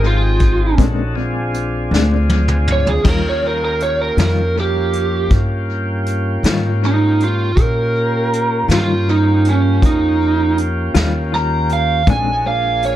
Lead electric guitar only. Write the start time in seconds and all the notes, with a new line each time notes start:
0.07 F4
2.72 C#5
2.89 G#4
3.10 A#4
3.29 C#5
3.47 A#4
3.65 A#4
3.82 C#5
4.01 A#4
4.20 A#4
4.60 G4
6.86 D#4
7.24 F4
7.61 A#4
8.74 F4
9.11 D#4
9.50 C#4
9.85 D#4
11.35 A#5
11.73 F5
12.10 G#5
12.47 F5
12.85 C#5